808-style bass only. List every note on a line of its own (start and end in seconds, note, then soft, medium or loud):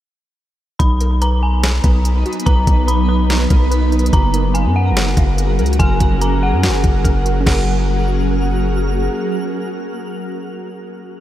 0.80 1.80 B1 loud
1.84 2.24 B1 loud
2.47 2.67 B1 loud
2.67 3.47 B1 loud
3.51 4.11 B1 loud
4.13 4.67 F#1 loud
4.65 4.93 F#2 medium
4.91 5.16 F#1 loud
5.17 5.60 F#1 loud
5.59 5.79 C#2 loud
5.80 6.00 F#1 loud
6.01 6.54 F#1 loud
6.53 6.70 F#2 loud
6.68 6.83 F#1 loud
6.84 7.04 F#1 loud
7.05 7.45 F#1 loud
7.46 9.09 F#1 loud